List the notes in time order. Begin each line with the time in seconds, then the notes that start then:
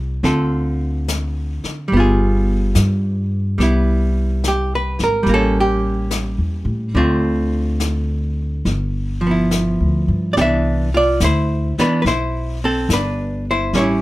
Already playing: C2 A3 C4 G4
0.23 D2 D3 C4 F4 A4, brush sweep, snare
1.08 snare, hi-hat pedal
1.64 muted upright bass stroke, snare
1.88 G3
1.92 G1 B3, brush sweep
1.97 F4 G#4
2.75 G2, snare, hi-hat pedal
3.58 C2 G3 B3, brush sweep, snare
3.62 E4
4.44 snare, hi-hat pedal
4.48 G4
4.75 B4
4.99 G#1, snare
5.04 A#4
5.23 A1 G3, brush sweep, snare
5.29 A#3
5.34 C#4 A4
5.60 G4
6.11 snare, hi-hat pedal
6.38 E2
6.65 A2
6.94 D2 D3 A3 C4 F4, brush sweep
7.80 snare, hi-hat pedal
8.65 G1, brush sweep, snare
9.21 F3
9.27 B3
9.31 E4
9.51 snare, hi-hat pedal
9.80 D2
10.08 G2
10.33 C2 D5, brush sweep, snare
10.37 E3 B3 D4 G4
10.41 E5
10.94 F4 D5
11.20 D2 E4, snare, hi-hat pedal
11.24 C5
11.78 E3 B3 D4 B4, muted upright bass stroke, snare
12.02 B1 B4, brush sweep, snare
12.07 E4 C5
12.64 C4 A4
12.89 G1, snare, hi-hat pedal
12.93 D4 B4
13.51 E4 C5
13.73 A1 G3 A#3 C#4, brush sweep, snare
13.78 E4 C#5